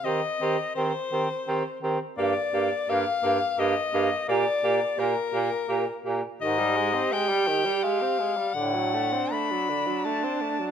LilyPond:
<<
  \new Staff \with { instrumentName = "Soprano saxophone" } { \time 3/4 \key g \phrygian \tempo 4 = 84 ees''4 c''4. r8 | d''4 f''4 ees''4 | d''4 bes'4. r8 | ees''4 g''4 f''4 |
fis''4 b''4 a''4 | }
  \new Staff \with { instrumentName = "Alto saxophone" } { \time 3/4 \key g \phrygian g'8 g'8 g'8 g'8 g'8 g'8 | g'8 g'8 g'8 g'8 g'8 g'8 | g'8 g'8 g'8 g'8 g'8 g'8 | g'2. |
d'2. | }
  \new Staff \with { instrumentName = "Tenor saxophone" } { \time 3/4 \key g \phrygian c'8 c'8 c'8 c'8 c'8 c'8 | bes8 bes8 bes8 bes8 bes8 bes8 | bes8 bes8 bes8 bes8 bes8 bes8 | ees16 g16 aes16 c'16 aes16 g16 ees16 g16 aes16 c'16 aes16 g16 |
d16 fis16 a16 c'16 a16 fis16 d16 fis16 a16 c'16 a16 fis16 | }
  \new Staff \with { instrumentName = "Bass clarinet" } { \clef bass \time 3/4 \key g \phrygian ees8 ees8 ees8 ees8 ees8 ees8 | g,8 g,8 g,8 g,8 g,8 g,8 | bes,8 bes,8 bes,8 bes,8 bes,8 bes,8 | aes,4 r2 |
a,4 r2 | }
>>